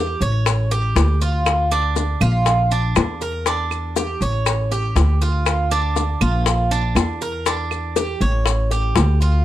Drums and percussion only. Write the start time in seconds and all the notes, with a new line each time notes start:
0.21 maracas
0.46 high bongo, claves, maracas
0.71 high bongo, maracas
0.96 high bongo, low bongo, maracas
1.21 high bongo, maracas
1.46 high bongo, claves, maracas
1.72 high bongo, maracas
1.96 high bongo, maracas
2.21 high bongo, claves, maracas
2.46 high bongo, maracas
2.71 maracas
2.96 high bongo, low bongo, claves, maracas
3.21 high bongo, maracas
3.46 high bongo, maracas
3.71 high bongo, claves, maracas
3.96 high bongo, maracas
4.22 maracas
4.46 high bongo, claves, maracas
4.71 high bongo, maracas
4.96 high bongo, low bongo, maracas
5.22 high bongo, maracas
5.46 high bongo, claves, maracas
5.71 high bongo, maracas
5.96 high bongo, maracas
6.21 high bongo, claves, maracas
6.46 high bongo, maracas
6.72 maracas
6.96 high bongo, low bongo, claves, maracas
7.21 high bongo, maracas
7.46 high bongo, maracas
7.71 high bongo, claves, maracas
7.96 high bongo, maracas
8.22 maracas
8.46 high bongo, claves, maracas
8.71 high bongo, maracas
8.96 high bongo, low bongo, maracas
9.20 high bongo, maracas